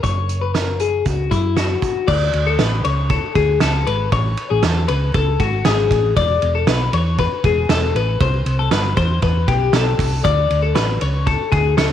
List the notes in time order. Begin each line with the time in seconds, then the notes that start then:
0.03 F#1 C#5, kick, closed hi-hat
0.29 closed hi-hat
0.41 B4
0.54 A#4, snare, closed hi-hat
0.80 G#4, closed hi-hat
1.05 C#2 F#4, kick, closed hi-hat
1.31 F#2 E4, kick, closed hi-hat
1.57 F#4, snare, closed hi-hat
1.82 kick, closed hi-hat
2.08 D2 D5, kick, crash
2.33 D2, ride
2.47 A4
2.59 A1 B4, snare, ride
2.85 C#2 C#5, ride
3.10 A4, kick, ride
3.35 D2 G#4, kick, ride
3.60 C#2 A4, snare, ride
3.87 G#1 B4, ride
4.12 A1 C#5, kick, ride
4.37 ride
4.50 A1 G#4
4.63 E2 A4, snare, ride
4.88 C#2 B4, ride
5.14 C#2 A4, kick, ride
5.40 G#1 F#4, kick, ride
5.65 G#1 G#4, snare, ride
5.91 A1, kick, ride
6.17 E1 D5, kick, ride
6.42 E1, ride
6.55 A4
6.67 B1 B4, snare, ride
6.93 E2 C#5, ride
7.18 B4, kick, ride
7.44 E1 G#4, kick, ride
7.69 E1 A4, snare, ride
7.95 A1 B4, ride
8.20 C2 C5, kick, ride
8.46 C2, ride
8.59 A4
8.71 G1 B4, snare, ride
8.97 E2 C5, kick, ride
9.22 E2 B4, kick, ride
9.48 B1 G4, kick, ride
9.73 B1 A4, snare, ride
9.99 C2, kick, open hi-hat, ride
10.24 D2 D5, kick, hi-hat pedal, ride
10.50 D2, ride
10.62 A4
10.75 A1 B4, snare, ride
11.01 C#2 C#5, ride
11.26 A4, kick, ride
11.52 D2 G#4, kick, ride
11.77 C#2 A4, snare, ride